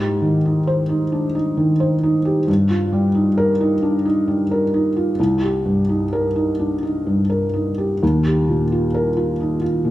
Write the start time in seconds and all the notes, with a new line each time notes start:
Already playing: G#2
0.00 G4
0.22 D#3
0.45 D#4
0.67 C5
0.89 D#4
1.12 D4
1.35 D#4
1.57 D#3
1.80 C5
2.03 D#4
2.25 G4
2.48 G2
2.70 F4
2.92 G3
3.15 D#4
3.38 A#4
3.60 D#4
3.82 D4
4.05 D#4
4.28 G3
4.51 A#4
4.74 D#4
4.97 F4
5.19 C2
5.42 G4
5.65 G2
5.89 D#4
6.13 A#4
6.36 D#4
6.59 D4
6.83 D#4
7.07 G2
7.30 A#4
7.54 D#4
7.78 G4
8.03 D#2
8.26 G4
8.49 A#2
8.72 F4
8.94 A#4
9.17 F4
9.40 D#4
9.62 F4
9.85 A#2